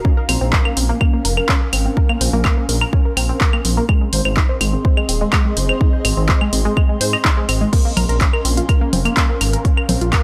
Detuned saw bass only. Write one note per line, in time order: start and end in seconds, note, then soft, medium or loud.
0.29 0.37 A#1 loud
0.41 0.56 A#1 medium
0.77 0.92 A#1 loud
1.25 1.40 F1 medium
1.73 1.88 G#1 medium
2.21 2.29 A#1 medium
2.33 2.48 A#1 loud
2.69 2.84 A#1 loud
3.17 3.32 A#1 medium
3.65 3.80 A#1 medium
4.13 4.21 G#1 loud
4.25 4.40 G#1 loud
4.61 4.76 G#1 loud
5.09 5.24 D#1 medium
5.57 5.72 F#1 medium
6.05 6.13 G#1 medium
6.17 6.32 G#1 loud
6.53 6.68 G#1 loud
7.01 7.16 G#2 loud
7.49 7.64 G#1 loud
7.97 8.05 A#1 loud
8.09 8.24 A#1 loud
8.45 8.60 A#1 loud
8.93 9.08 F1 medium
9.41 9.56 G#1 medium
9.89 9.97 A#1 medium
10.01 10.16 A#1 medium